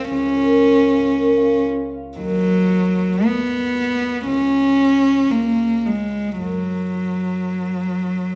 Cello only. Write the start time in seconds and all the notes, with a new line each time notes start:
Already playing: C4
0.13 C#4
2.18 F#3
3.26 B3
4.27 C#4
5.31 A#3
5.86 G#3
6.41 F#3